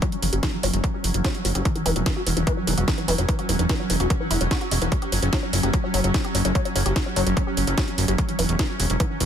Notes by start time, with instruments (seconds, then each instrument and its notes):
Already playing: synth texture F#3 C#4
0.02 synth arpeggio sound F#3, kick, closed hi-hat
0.12 synth arpeggio sound G3, closed hi-hat
0.22 analog synth bass F#1, synth arpeggio sound F#3, open hi-hat
0.33 analog synth bass F#1, synth arpeggio sound G4, closed hi-hat
0.43 synth arpeggio sound F#3, kick, snare, closed hi-hat
0.53 synth arpeggio sound F#3
0.63 analog synth bass F#1, synth arpeggio sound F#3, open hi-hat
0.73 analog synth bass F#1, synth arpeggio sound G3, closed hi-hat
0.84 synth arpeggio sound F#3, kick, closed hi-hat
0.94 synth arpeggio sound G4
1.04 analog synth bass F#1, synth arpeggio sound F#3, open hi-hat
1.14 analog synth bass F#1, synth arpeggio sound F#3, closed hi-hat
1.25 synth arpeggio sound F#3, kick, snare, closed hi-hat
1.35 synth arpeggio sound G3, closed hi-hat
1.45 analog synth bass F#1, synth arpeggio sound F#3, open hi-hat
1.55 analog synth bass F#1, synth arpeggio sound G4, closed hi-hat
1.65 synth arpeggio sound E3, kick, closed hi-hat
1.76 synth arpeggio sound E3, closed hi-hat
1.86 analog synth bass E1, synth arpeggio sound E3, open hi-hat
1.96 analog synth bass E1, synth arpeggio sound F#3, closed hi-hat
2.06 synth arpeggio sound E3, kick, snare, closed hi-hat
2.16 synth arpeggio sound F#4
2.27 analog synth bass E1, synth arpeggio sound E3, open hi-hat
2.37 analog synth bass E1, synth arpeggio sound E3, closed hi-hat
2.47 synth arpeggio sound E3, kick, closed hi-hat
2.57 synth arpeggio sound F#3
2.67 analog synth bass E1, synth arpeggio sound E3, open hi-hat
2.78 analog synth bass E1, synth arpeggio sound F#4, closed hi-hat
2.88 synth arpeggio sound E3, kick, snare, closed hi-hat
2.98 synth arpeggio sound E3, closed hi-hat
3.08 analog synth bass E1, synth arpeggio sound E3, open hi-hat
3.18 analog synth bass E1, synth arpeggio sound F#3, closed hi-hat
3.29 synth arpeggio sound E3, kick, closed hi-hat
3.39 synth arpeggio sound F#4, closed hi-hat
3.49 analog synth bass E1, synth arpeggio sound E3, open hi-hat
3.59 analog synth bass E1, synth arpeggio sound E3, closed hi-hat
3.69 synth arpeggio sound E3, kick, snare, closed hi-hat
3.80 synth arpeggio sound F#3
3.90 analog synth bass E1, synth arpeggio sound E3, open hi-hat
4.00 analog synth bass E1, synth arpeggio sound F#4, closed hi-hat
4.10 synth arpeggio sound E3, kick, closed hi-hat
4.20 synth arpeggio sound E3
4.31 analog synth bass E1, synth arpeggio sound E4, open hi-hat
4.41 analog synth bass E1, synth arpeggio sound F#3, closed hi-hat
4.51 synth arpeggio sound F#4, kick, snare, closed hi-hat
4.61 synth arpeggio sound F#4, closed hi-hat
4.71 analog synth bass E1, synth arpeggio sound G#3, open hi-hat
4.82 analog synth bass E1, synth arpeggio sound E3, closed hi-hat
4.92 synth arpeggio sound F#3, kick, closed hi-hat
5.02 synth arpeggio sound G4, closed hi-hat
5.12 analog synth bass F#1, synth arpeggio sound F#3, open hi-hat
5.22 analog synth bass F#1, synth arpeggio sound F#3, closed hi-hat
5.33 synth arpeggio sound F#3, kick, snare, closed hi-hat
5.43 synth arpeggio sound F#3
5.53 analog synth bass F#1, synth arpeggio sound F#3, open hi-hat
5.63 analog synth bass F#1, synth arpeggio sound G4, closed hi-hat
5.74 synth arpeggio sound F#3, kick, closed hi-hat
5.84 synth arpeggio sound F#3
5.94 analog synth bass F#1, synth arpeggio sound F#3, open hi-hat
6.04 analog synth bass F#1, synth arpeggio sound F#3, closed hi-hat
6.14 synth arpeggio sound F#3, kick, snare, closed hi-hat
6.25 synth arpeggio sound G4, closed hi-hat
6.35 analog synth bass F#1, synth arpeggio sound F#3, open hi-hat
6.45 analog synth bass F#1, synth arpeggio sound F#3, closed hi-hat
6.55 synth arpeggio sound F#3, kick, closed hi-hat
6.65 synth arpeggio sound F#3, closed hi-hat
6.76 analog synth bass F#1, synth arpeggio sound F#3, open hi-hat
6.86 analog synth bass F#1, synth arpeggio sound G4, closed hi-hat
6.96 synth arpeggio sound F#3, kick, snare, closed hi-hat
7.06 synth arpeggio sound F#3
7.16 analog synth bass F#1, synth arpeggio sound F#3, open hi-hat
7.27 analog synth bass F#1, synth arpeggio sound F#3, closed hi-hat
7.37 synth arpeggio sound F#3, kick, closed hi-hat
7.47 synth arpeggio sound G4
7.57 analog synth bass F#1, synth arpeggio sound F#3, open hi-hat
7.67 analog synth bass F#1, synth arpeggio sound F#3, closed hi-hat
7.78 synth arpeggio sound F#3, kick, snare, closed hi-hat
7.88 synth arpeggio sound F#3, closed hi-hat
7.98 analog synth bass F#1, synth arpeggio sound F#3, open hi-hat
8.08 analog synth bass F#1, synth arpeggio sound G4, closed hi-hat
8.18 synth arpeggio sound E3, kick, closed hi-hat
8.29 synth arpeggio sound E3, closed hi-hat
8.39 analog synth bass E1, synth arpeggio sound E3, open hi-hat
8.49 analog synth bass E1, synth arpeggio sound E3, closed hi-hat
8.59 synth arpeggio sound E3, kick, snare, closed hi-hat
8.69 synth arpeggio sound F#4
8.80 analog synth bass E1, synth arpeggio sound E3, open hi-hat
8.90 analog synth bass E1, synth arpeggio sound E3, closed hi-hat
9.00 synth arpeggio sound E3, kick, closed hi-hat
9.10 synth arpeggio sound E3
9.20 analog synth bass E1, synth arpeggio sound E3, open hi-hat